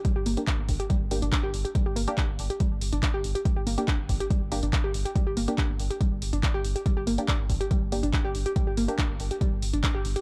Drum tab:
HH |x-oxx-oxx-oxx-ox|x-oxx-oxx-oxx-ox|x-oxx-oxx-oxx-ox|x-oxx-oxx-oxx-ox|
CP |----x-------x---|----x-------x---|----x-------x---|----x-------x---|
BD |o---o-o-o---o---|o---o---o---o---|o---o-o-o---o---|o---o---o---o---|

HH |x-oxx-oxx-oxx-ox|x-oxx-oxx-oxx-ox|
CP |----x-------x---|----x-------x---|
BD |o---o-o-o---o---|o---o---o---o---|